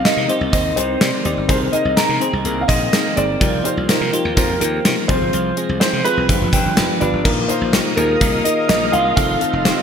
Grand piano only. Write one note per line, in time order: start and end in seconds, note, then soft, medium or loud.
0.04 0.27 D#5 medium
0.28 0.34 D#5 medium
0.52 0.77 D#5 medium
0.76 1.21 C5 medium
1.49 1.54 C5 medium
1.72 1.97 D#5 medium
1.96 2.64 A#5 medium
2.61 2.69 F5 medium
2.68 3.18 D#5 loud
3.16 3.66 D5 medium
3.64 3.70 C5 medium
3.88 4.35 A#4 medium
4.36 4.59 A#4 medium
4.60 5.10 A#4 medium
5.08 5.53 C5 medium
5.80 6.05 C5 medium
6.04 6.73 B4 loud
6.53 7.02 G5 medium
7.00 7.25 D5 medium
7.24 7.30 A#4 medium
7.48 7.73 C5 medium
7.72 7.78 A#4 medium
7.96 8.46 A#4 medium
8.44 8.67 D#5 medium
8.68 8.93 D#5 medium
8.92 9.14 F5 medium
9.16 9.82 F5 medium